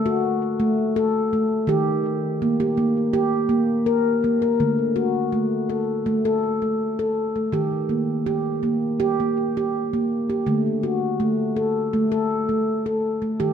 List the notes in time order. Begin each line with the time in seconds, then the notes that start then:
Already playing: D3
0.06 F#4
0.60 A3
0.96 A4
1.33 A3
1.67 D#3 G4
2.42 A#3
2.60 G4
2.77 A#3
3.13 G4
3.49 A#3
3.86 A#4
4.24 A#3
4.42 A#4
4.60 D3 A3
4.96 F#4
5.32 A3
5.70 A4
6.06 A3
6.25 A4
6.62 A3
6.99 A4
7.36 A3
7.52 D#3 G4
7.89 A#3
8.26 G4
8.63 A#3
9.00 G4
9.20 A#3
9.57 G4
9.93 A#3
10.30 G4
10.47 D3 A3
10.83 F#4
11.20 A3
11.56 A4
11.93 A3
12.12 A4
12.49 A3
12.86 A4
13.22 A3
13.40 D#3 G4